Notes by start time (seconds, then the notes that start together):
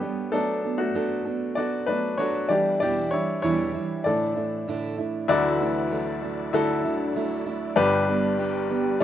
Already playing: B3 D4 G4 A4 B4 C#5
0.01 G3 B3 D4 G4
0.32 F#3 A3 B3 D4 A4
0.64 B3 D4 A4
0.78 A3 F#4
0.94 F#3 B3 D4 A4
1.25 B3 D4 A4
1.55 F#3 B3 D4 F#4 A4 D5
1.86 F#3 A3 B3 D4 A4 B4
2.18 F#3 B3 D4 F#4 A4 C#5
2.49 E3 G3 D4 E4 G4 D5
2.80 E2 B2 E3 G3 D4 E4 G4 D5
3.11 E3 G3 D4 E4 C#5
3.42 E2 B2 E3 G3 D4 E4 C#5
3.74 E3 G3 D4 E4
4.04 A2 D3 E3 A3 D4 E4 A4 D5
4.36 A3 D4 E4
4.68 A2 D3 A3 D4 E4
4.98 A3 D4 E4
5.28 D2 D3 E3 F#3 A3 D4 E4 F#4 A4 D5
5.61 A3 D4 E4
5.91 F#3 A3 D4 E4
6.23 A3 D4 E4
6.53 D3 F#3 A3 D4 E4 F#4 A4
6.84 D3 A3 D4 E4
7.15 F#3 A3 D4 E4
7.46 A3 D4 E4
7.76 G1 G2 D3 G3 B3 D4 G4 B4
8.08 G3 B3 D4 G4
8.38 G3 B3 D4 G4
8.70 G3 B3 D4 G4
9.00 G2 D3 G3 D4